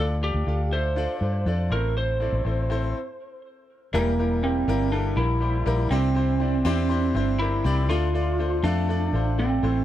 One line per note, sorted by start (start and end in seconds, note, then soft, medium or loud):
0.00 0.32 D2 loud
0.00 0.68 D3 medium
0.00 0.14 D4 medium
0.00 0.15 F4 medium
0.00 0.15 A4 medium
0.00 0.15 D5 loud
0.21 0.39 D4 medium
0.21 0.40 F4 medium
0.21 0.74 G4 medium
0.21 0.40 A4 medium
0.21 0.40 D5 medium
0.34 0.46 D2 loud
0.47 1.06 D2 medium
0.47 0.64 D4 medium
0.47 0.65 F4 medium
0.47 0.65 A4 medium
0.47 0.65 F5 medium
0.71 0.89 D4 medium
0.71 0.89 F4 medium
0.71 0.90 A4 medium
0.71 1.72 C5 medium
0.71 0.90 E5 medium
0.96 1.14 D4 medium
0.96 1.14 F4 medium
0.96 1.14 A4 medium
0.96 1.15 D5 loud
1.21 1.44 G2 medium
1.21 1.39 D4 medium
1.21 1.39 F4 medium
1.21 1.39 A4 medium
1.21 1.39 D5 medium
1.46 1.69 F2 loud
1.46 1.64 D4 medium
1.46 1.64 F4 medium
1.46 1.64 A4 medium
1.46 1.64 D5 medium
1.70 2.29 A1 medium
1.70 2.41 A2 medium
1.70 2.10 C4 medium
1.70 2.11 E4 medium
1.70 2.11 A4 medium
1.70 1.95 A#4 medium
1.70 2.11 C5 medium
1.98 3.41 C5 medium
2.20 2.38 C4 medium
2.20 2.38 E4 medium
2.20 2.38 A4 medium
2.20 2.39 D5 medium
2.32 2.44 A1 medium
2.45 2.92 A1 medium
2.45 2.62 C4 medium
2.45 2.63 E4 medium
2.45 2.63 A4 medium
2.45 2.63 C5 medium
2.70 2.87 C4 medium
2.70 2.87 E4 medium
2.70 2.88 A4 medium
2.70 2.88 C5 loud
3.93 4.64 E1 loud
3.93 4.64 E3 medium
3.93 4.11 G3 loud
3.93 4.11 A#3 medium
3.93 4.43 A#3 medium
3.93 4.11 E4 medium
3.93 4.11 G4 medium
3.93 4.12 A#4 loud
4.18 4.36 G3 medium
4.18 4.36 A#3 medium
4.18 4.36 E4 medium
4.18 4.37 G4 medium
4.18 4.37 A#4 medium
4.43 4.61 G3 medium
4.43 4.61 A#3 medium
4.43 4.92 C4 medium
4.43 4.61 E4 medium
4.43 4.61 G4 medium
4.43 4.61 A#4 medium
4.68 5.14 G1 medium
4.68 4.85 G3 medium
4.68 4.86 A#3 medium
4.68 4.86 E4 medium
4.68 4.86 G4 medium
4.68 4.86 A#4 loud
4.92 5.10 G3 medium
4.92 5.10 A#3 medium
4.92 5.18 D4 loud
4.92 5.10 E4 medium
4.92 5.10 G4 medium
4.92 5.11 A4 medium
5.16 5.63 A#1 medium
5.16 5.34 G3 medium
5.16 5.34 A#3 medium
5.16 5.87 E4 loud
5.16 5.35 E4 medium
5.16 5.35 G4 medium
5.16 5.35 A#4 medium
5.40 5.59 G3 medium
5.40 5.59 A#3 medium
5.40 5.59 E4 medium
5.40 5.59 G4 medium
5.40 5.60 C5 medium
5.66 5.90 A#1 loud
5.66 5.84 G3 loud
5.66 5.84 A#3 medium
5.66 5.84 E4 medium
5.66 5.84 G4 medium
5.66 5.85 A#4 loud
5.91 6.62 C2 loud
5.91 6.62 C3 medium
5.91 7.44 C4 medium
5.91 6.09 C4 loud
5.91 6.09 D4 loud
5.91 6.09 E4 medium
5.91 6.09 G4 medium
5.91 6.09 C5 loud
6.15 6.33 C4 medium
6.15 6.33 D4 medium
6.15 6.34 E4 medium
6.15 6.34 G4 medium
6.15 6.34 C5 medium
6.40 6.58 C4 medium
6.40 6.58 D4 medium
6.40 6.58 E4 medium
6.40 6.59 G4 medium
6.40 6.59 D5 medium
6.65 7.11 E2 medium
6.65 6.83 C4 loud
6.65 6.83 D4 loud
6.65 6.83 E4 loud
6.65 6.83 G4 loud
6.65 6.84 C5 loud
6.89 7.07 C4 medium
6.89 7.08 D4 loud
6.89 7.08 E4 medium
6.89 7.08 G4 medium
6.89 7.08 C5 loud
7.14 7.61 G1 medium
7.14 7.33 C4 medium
7.14 7.33 D4 medium
7.14 7.33 E4 medium
7.14 7.33 G4 medium
7.14 7.33 C5 loud
7.39 7.57 C4 medium
7.39 7.58 D4 medium
7.39 7.89 E4 loud
7.39 7.58 E4 medium
7.39 7.58 G4 medium
7.39 7.58 A#4 medium
7.64 7.89 C2 loud
7.64 7.82 C4 medium
7.64 7.82 D4 medium
7.64 7.82 E4 medium
7.64 7.83 G4 medium
7.64 7.83 D5 loud
7.89 8.60 D2 loud
7.89 8.60 D3 medium
7.89 8.07 A3 loud
7.89 8.07 D4 loud
7.89 8.66 F4 loud
7.89 8.07 F4 loud
7.89 8.07 A4 medium
7.89 8.07 D5 loud
8.14 8.31 A3 medium
8.14 8.32 D4 medium
8.14 8.32 F4 medium
8.14 8.32 A4 medium
8.14 8.32 D5 medium
8.39 8.56 A3 medium
8.39 8.56 D4 medium
8.39 8.57 F4 medium
8.39 8.57 A4 medium
8.39 8.57 C5 medium
8.63 9.10 F2 medium
8.63 8.81 A3 loud
8.63 8.81 D4 medium
8.63 9.39 D4 loud
8.63 8.81 F4 loud
8.63 8.82 A4 medium
8.63 8.82 D5 loud
8.89 9.06 A3 medium
8.89 9.06 D4 medium
8.89 9.07 F4 medium
8.89 9.07 A4 medium
8.89 9.07 D5 loud
9.13 9.59 A1 medium
9.13 9.31 A3 medium
9.13 9.31 D4 medium
9.13 9.31 F4 medium
9.13 9.31 A4 medium
9.13 9.32 C5 medium
9.38 9.55 A3 medium
9.38 9.85 C4 medium
9.38 9.56 D4 medium
9.38 9.56 F4 medium
9.38 9.56 A4 medium
9.38 9.56 D5 medium
9.63 9.85 A1 loud
9.63 9.85 A2 medium
9.63 9.85 A3 medium
9.63 9.85 C4 medium
9.63 9.85 E4 medium
9.63 9.85 A4 medium
9.63 9.85 C5 medium